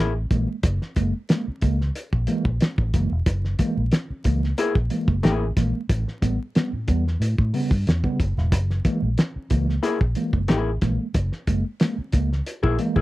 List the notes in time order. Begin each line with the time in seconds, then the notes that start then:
Already playing: A#3 E4
0.00 A1 G#4
0.31 A#1 E3 G#3 A#3, kick, closed hi-hat
0.49 G#3 A#3
0.63 F#1, kick, closed hi-hat
0.82 snare
0.96 F#1 G#3 A#3, kick, closed hi-hat
1.29 G#3 A#3, snare, closed hi-hat
1.48 muted fingered electric bass stroke
1.62 C#2 G#3 A#3, kick, closed hi-hat
1.81 snare
1.95 closed hi-hat
2.13 A#1, kick
2.27 E3 G#3 A#3, closed hi-hat
2.45 A#1, kick
2.60 G#3 A#3, snare, closed hi-hat
2.78 A1, kick
2.94 F#1 E3 G#3 A#3, kick, closed hi-hat
3.12 E1
3.26 F#1, kick, closed hi-hat
3.45 snare
3.59 E3 G#3 A#3, kick, closed hi-hat
3.77 A#1 G#3 A#3
3.92 snare, closed hi-hat
4.10 muted fingered electric bass stroke
4.24 C#2 E3 G#3 A#3, kick, closed hi-hat
4.43 G#3 A#3, snare
4.58 A#3 E4 G#4, closed hi-hat
4.75 A#1, kick
4.90 E3 G#3 A#3, closed hi-hat
5.08 F#1 G#3 A#3, kick
5.23 A1 A#3 E4 G#4, snare, closed hi-hat
5.57 A#1 E3 G#3 A#3, kick, snare, closed hi-hat
5.74 G#3 A#3
5.89 A1 A2, kick, closed hi-hat
6.08 snare
6.22 A1 G3 B3, kick, closed hi-hat
6.55 G3 B3, snare, closed hi-hat
6.73 A2, muted fingered electric bass stroke
6.88 E2 G3 B3, kick, closed hi-hat
7.08 snare
7.20 A2, closed hi-hat
7.38 A2, kick
7.54 C#3 G3 B3, open hi-hat
7.71 G2, kick
7.87 E2, snare, closed hi-hat
8.04 C#3 G3 B3, kick
8.20 F#1, kick, closed hi-hat
8.37 E1 A2, snare
8.52 F#1, kick, closed hi-hat
8.70 snare
8.85 E3 G#3 A#3, kick, closed hi-hat
9.02 A#1 G#3 A#3
9.18 snare, closed hi-hat
9.36 muted fingered electric bass stroke
9.50 C#2 E3 G#3 A#3, kick, closed hi-hat
9.68 G#3 A#3, snare
9.83 A#3 E4 G#4, closed hi-hat
10.01 A#1, kick
10.15 E3 G#3 A#3, closed hi-hat
10.33 F#1 G#3 A#3, kick
10.48 A1 A#3 E4 G#4, snare, closed hi-hat
10.81 A#1 E3 G#3 A#3, kick, snare, closed hi-hat
11.00 G#3 A#3
11.14 F#1, kick, closed hi-hat
11.32 snare
11.47 F#1 G#3 A#3, kick, closed hi-hat
11.80 G#3 A#3, snare, closed hi-hat
11.98 muted fingered electric bass stroke
12.12 C#2 G#3 A#3, kick, closed hi-hat
12.32 snare
12.47 closed hi-hat
12.63 A#1 A#3 E4 G#4, kick
12.79 E3 G#3 A#3, closed hi-hat
12.96 A#1 A#3 E4 G#4, kick